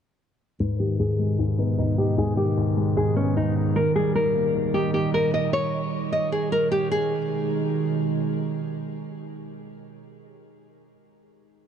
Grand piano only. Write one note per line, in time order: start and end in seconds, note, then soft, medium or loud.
0.60 0.98 G#2 medium
0.80 1.78 D#3 medium
0.99 1.37 G#2 medium
1.19 2.18 G#3 medium
1.39 1.77 G#2 medium
1.59 2.57 B3 medium
1.78 2.16 G#2 medium
1.98 2.97 D#4 medium
2.18 2.56 G#2 medium
2.38 3.36 D#3 medium
2.57 2.95 G#2 medium
2.77 3.76 G#3 medium
2.97 3.35 G#2 medium
3.17 3.76 B3 medium
3.36 3.76 G#2 medium
3.56 3.76 D#4 medium
3.76 4.14 D#3 medium
3.96 4.94 G3 medium
4.15 4.53 D#3 medium
4.35 5.34 A#3 medium
4.55 4.93 D#3 medium
4.74 5.73 D#4 medium
4.94 5.93 D#3 medium
5.14 6.13 D#5 medium